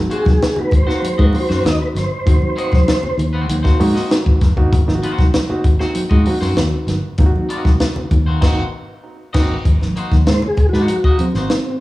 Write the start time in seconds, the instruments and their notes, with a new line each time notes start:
Already playing: reed electric piano A#3 C4 D#4 F#4
0.10 clean electric guitar A#3 C4 F#4 C5, tonewheel organ G#4, closed hi-hat, muted conga
0.25 fingered electric bass C2, kick, snare, high conga
0.42 snare, closed hi-hat
0.56 reed electric piano A#3 C4 D#4 F#4, tonewheel organ B4, muted fingered electric bass stroke, low conga
0.71 fingered electric bass G#1, tonewheel organ C5, kick, closed hi-hat, muted conga, low conga
0.87 reed electric piano A#3 C4 D#4 F#4, clean electric guitar A#3 C4 F#4 C5, snare
1.02 muted fingered electric bass stroke, closed hi-hat, high conga
1.18 fingered electric bass G#2, clean electric guitar A#3 C4 F#4 D#5, tonewheel organ B4, kick
1.33 reed electric piano A#3 C4 D#4 F4, tonewheel organ C5, open hi-hat, muted conga, high conga
1.40 reed electric piano F#4
1.49 fingered electric bass F#2, clean electric guitar A#3 C4 F#4 C5, snare
1.65 fingered electric bass D#2, tonewheel organ D#5, snare, closed hi-hat
1.82 tonewheel organ B4
1.95 fingered electric bass G1, tonewheel organ C5, snare, closed hi-hat, muted conga, high conga
2.26 fingered electric bass G#1, reed electric piano A#3 C4 D#4 F#4, kick, closed hi-hat, muted conga, low conga
2.42 high conga
2.56 clean electric guitar A#3 C4 F#4 D#5, closed hi-hat, muted conga
2.72 fingered electric bass C2, kick, snare, high conga
2.88 snare, closed hi-hat, muted conga
3.03 muted fingered electric bass stroke, low conga
3.18 fingered electric bass D#2, closed hi-hat, muted conga, low conga
3.33 clean electric guitar A#3 C4 F#4 C5
3.49 fingered electric bass D#2, closed hi-hat, muted conga, high conga
3.63 clean electric guitar A#3 C4 F#4 C5, reed electric piano A#3 C4 D#4 F#4, kick, snare
3.80 fingered electric bass G#2, reed electric piano A#3 C4 D#4 F#4, open hi-hat, high conga
3.94 clean electric guitar A#3 C4 F#4 D#5, snare
4.11 snare, closed hi-hat, muted conga
4.26 fingered electric bass G#1, kick
4.41 fingered electric bass F#1, kick, snare, closed hi-hat, muted conga, high conga
4.57 fingered electric bass G1, reed electric piano A#3 C4 D#4 F#4, kick
4.72 fingered electric bass G#1, kick, closed hi-hat, muted conga, low conga
4.88 reed electric piano A#3 C4 D#4 F4, snare, high conga
4.95 reed electric piano F#4
5.02 clean electric guitar A#3 C4 F#4 C5, closed hi-hat, muted conga
5.18 fingered electric bass C2, kick, snare, high conga
5.34 snare, closed hi-hat, muted conga
5.49 reed electric piano A#3 C4 D#4 F#4, muted fingered electric bass stroke, low conga
5.64 fingered electric bass G#1, kick, closed hi-hat, low conga
5.79 reed electric piano A#3 C4 D#4 F#4, clean electric guitar A#3 C4 F#4 C5, snare
5.95 muted fingered electric bass stroke, closed hi-hat, muted conga, high conga
6.10 fingered electric bass G#2, clean electric guitar A#3 C4 F#4 D#5, kick
6.26 reed electric piano A#3 C4 D#4 F#4, open hi-hat, high conga
6.41 fingered electric bass F#2, clean electric guitar A#3 C4 F#4 C5, snare
6.57 fingered electric bass D#2, snare, closed hi-hat, muted conga
6.87 fingered electric bass G1, snare, closed hi-hat, muted conga, high conga
7.18 fingered electric bass G#1, reed electric piano A#3 C4 D#4 F4, kick, closed hi-hat, muted conga, low conga
7.26 reed electric piano F#4
7.36 high conga
7.49 clean electric guitar A#3 C4 F#4 D#5, closed hi-hat
7.65 fingered electric bass C2, kick, snare, high conga
7.80 snare, closed hi-hat
7.96 muted fingered electric bass stroke, low conga
8.11 fingered electric bass D#2, kick, closed hi-hat, low conga
8.26 clean electric guitar A#3 C4 F#4 C5
8.41 fingered electric bass G#1, reed electric piano A#3 C4 D#4 F#4, clean electric guitar A#3 C4 F#4 C5, kick, snare, crash
9.33 fingered electric bass G#1, reed electric piano A#3 C4 D#4 F#4, clean electric guitar A#3 C4 F#4 D#5, kick, snare, crash
9.65 fingered electric bass G#1, kick, closed hi-hat, muted conga, low conga
9.81 snare, high conga
9.96 clean electric guitar A#3 D#4 F#4 C5, closed hi-hat, muted conga
10.12 fingered electric bass D#2, kick, snare, high conga
10.26 fingered electric bass G#2, tonewheel organ C5, snare, closed hi-hat, muted conga
10.42 low conga
10.48 tonewheel organ G#4
10.57 muted fingered electric bass stroke, kick, closed hi-hat, low conga
10.69 fingered electric bass G#2, tonewheel organ F#4
10.73 clean electric guitar A#3 D#4 F#4 C5, snare
10.88 tonewheel organ F#4, closed hi-hat, muted conga, high conga
11.04 clean electric guitar A#3 D#4 F#4 D#5, kick
11.19 tonewheel organ C4, muted fingered electric bass stroke, closed hi-hat, muted conga, high conga
11.34 fingered electric bass G#1, clean electric guitar A#3 D#4 F#4 C5, snare
11.50 snare, closed hi-hat, muted conga